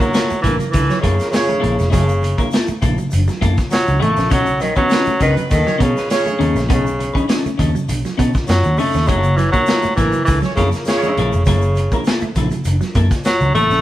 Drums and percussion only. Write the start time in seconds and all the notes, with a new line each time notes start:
0.00 kick, high conga, shaker
0.14 snare, closed hi-hat, shaker
0.30 shaker
0.44 kick, closed hi-hat, muted conga, high conga, low conga, shaker
0.60 closed hi-hat, shaker
0.73 kick, closed hi-hat, muted conga, high conga, shaker
0.90 snare, shaker
1.04 kick, closed hi-hat, muted conga, high conga, shaker
1.19 snare, closed hi-hat, shaker
1.32 snare, closed hi-hat, muted conga, shaker
1.49 high conga, shaker
1.64 closed hi-hat, muted conga, low conga
1.79 snare, shaker
1.92 kick, closed hi-hat, low conga, shaker
2.09 shaker
2.23 closed hi-hat, muted conga, shaker
2.38 kick, high conga, shaker
2.51 snare, closed hi-hat, muted conga, shaker
2.67 shaker
2.82 kick, closed hi-hat, muted conga, high conga, low conga, shaker
2.98 shaker
3.11 closed hi-hat, muted conga, high conga, shaker
3.27 snare, shaker
3.42 kick, closed hi-hat, muted conga, high conga, shaker
3.57 kick, snare, shaker
3.71 snare, closed hi-hat, muted conga, shaker
3.87 high conga, shaker
4.02 closed hi-hat, muted conga, low conga
4.16 snare, shaker
4.30 kick, closed hi-hat, muted conga, low conga, shaker
4.46 shaker
4.60 closed hi-hat, shaker
4.76 kick, high conga, shaker
4.89 snare, closed hi-hat, shaker
5.06 shaker
5.20 kick, closed hi-hat, muted conga, high conga, low conga, shaker
5.37 closed hi-hat, shaker
5.50 kick, closed hi-hat, muted conga, high conga, shaker
5.66 snare, shaker
5.80 kick, closed hi-hat, high conga, shaker
5.97 snare, shaker
6.10 snare, closed hi-hat, shaker
6.26 high conga, shaker
6.41 closed hi-hat, muted conga, low conga
6.56 snare, shaker
6.69 kick, closed hi-hat, muted conga, low conga, shaker
6.86 shaker
7.00 closed hi-hat, muted conga, shaker
7.15 kick, high conga, shaker
7.29 snare, closed hi-hat, shaker
7.45 shaker
7.59 kick, closed hi-hat, high conga, low conga, shaker
7.75 shaker
7.89 closed hi-hat, muted conga, high conga, shaker
8.05 snare, shaker
8.19 kick, closed hi-hat, muted conga, high conga, shaker
8.34 kick, snare, shaker
8.47 snare, closed hi-hat, muted conga, shaker
8.63 high conga, shaker
8.77 open hi-hat, low conga, shaker
8.93 snare, shaker
9.07 kick, closed hi-hat, muted conga, low conga, shaker
9.23 shaker
9.38 closed hi-hat, shaker
9.53 kick, high conga, shaker
9.66 snare, closed hi-hat, muted conga, shaker
9.82 shaker
9.97 kick, closed hi-hat, muted conga, high conga, low conga, shaker
10.12 shaker
10.26 kick, closed hi-hat, high conga, shaker
10.42 snare, shaker
10.56 kick, closed hi-hat, muted conga, high conga, shaker
10.72 snare, closed hi-hat, shaker
10.85 snare, closed hi-hat, muted conga, shaker
11.02 high conga, shaker
11.17 closed hi-hat, muted conga, low conga
11.32 shaker
11.45 kick, closed hi-hat, muted conga, low conga, shaker
11.61 shaker
11.75 closed hi-hat, shaker
11.91 kick, high conga, shaker
12.04 snare, closed hi-hat, muted conga, shaker
12.20 shaker
12.35 kick, closed hi-hat, high conga, low conga, shaker
12.51 closed hi-hat, shaker
12.64 closed hi-hat, muted conga, high conga, shaker
12.81 snare, shaker
12.95 kick, closed hi-hat, high conga, shaker
13.11 kick, snare, closed hi-hat, shaker
13.24 snare, closed hi-hat, shaker
13.40 high conga, shaker
13.55 closed hi-hat, low conga
13.70 snare, shaker